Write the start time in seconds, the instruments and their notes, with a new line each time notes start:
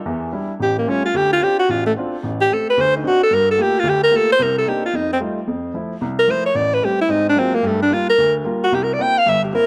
0.06 upright piano E2 E3
0.32 upright piano G3 D4 E4
0.60 upright piano A1, alto saxophone G4
0.79 alto saxophone A#3
0.87 upright piano G3 A3 C#4 F4, alto saxophone C#4
1.05 alto saxophone F4
1.14 upright piano D2, alto saxophone G4
1.33 alto saxophone F4
1.41 upright piano C4 D4 F4, alto saxophone G4
1.59 alto saxophone F#4
1.69 upright piano A1, alto saxophone F4
1.86 alto saxophone A3
1.97 upright piano C4 D4 F4
2.23 upright piano A1
2.41 alto saxophone G4
2.50 upright piano A3 C4 G4, alto saxophone A4
2.70 alto saxophone B4
2.77 upright piano D2, alto saxophone C5
2.97 alto saxophone D#4
3.04 upright piano C4 D4 D#4 F#4, alto saxophone F#4
3.23 alto saxophone A4
3.31 upright piano G2, alto saxophone A#4
3.51 alto saxophone A4
3.58 upright piano A3 A#3 F4 G4
3.62 alto saxophone G4
3.79 alto saxophone F4
3.83 upright piano D2 D3
3.89 alto saxophone G4
4.04 alto saxophone A#4
4.11 upright piano A3 A#3 F4 G4
4.17 alto saxophone A4
4.32 alto saxophone C5
4.39 upright piano C2 C3, alto saxophone A#4
4.58 alto saxophone A4
4.66 upright piano A#3 C4 D4 D#4, alto saxophone G4
4.86 alto saxophone F4
4.93 upright piano F2, alto saxophone D#4
5.13 alto saxophone C4
5.20 upright piano G3 A3 D#4 F4
5.47 upright piano F2
5.74 upright piano F3 A3 E4
6.01 upright piano C2
6.19 alto saxophone A#4
6.27 upright piano F3 A3 E4, alto saxophone C5
6.46 alto saxophone C#5
6.55 upright piano A1, alto saxophone D5
6.74 alto saxophone B4
6.82 upright piano G3 A3 C4, alto saxophone G4
7.01 alto saxophone E4
7.09 upright piano G#2 C4, alto saxophone D#4
7.29 alto saxophone D4
7.35 upright piano F#3 G#3 A#3 C4 F4, alto saxophone C4
7.55 alto saxophone A#3
7.63 upright piano G2 G3, alto saxophone A3
7.82 alto saxophone D4
7.90 upright piano G3 A#3 F4, alto saxophone F4
8.10 alto saxophone A#4
8.18 upright piano D2
8.44 upright piano G3 A#3 F4
8.64 alto saxophone F#4
8.72 upright piano C2, alto saxophone G4
8.83 alto saxophone A#4
8.94 alto saxophone D5
8.98 upright piano A#3 C4 E4, alto saxophone G5
9.18 alto saxophone F5
9.26 upright piano G1 G2, alto saxophone E5
9.44 alto saxophone G4
9.53 upright piano A#3 C4 E4, alto saxophone A#4